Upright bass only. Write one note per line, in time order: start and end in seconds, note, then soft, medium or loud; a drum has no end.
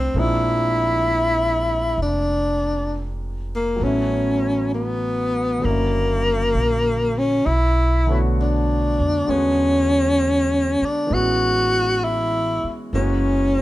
0.00 0.11 C2 medium
0.14 1.93 A#1 medium
1.98 3.77 F1 medium
3.81 5.59 A1 medium
5.64 6.51 F#1 medium
6.55 7.42 A#1 medium
7.46 8.95 B1 medium
9.00 9.26 F2 soft
9.28 10.77 E2 medium
10.82 muted upright bass stroke soft
11.11 12.60 A1 medium
12.64 muted upright bass stroke soft
12.93 13.62 F#1 medium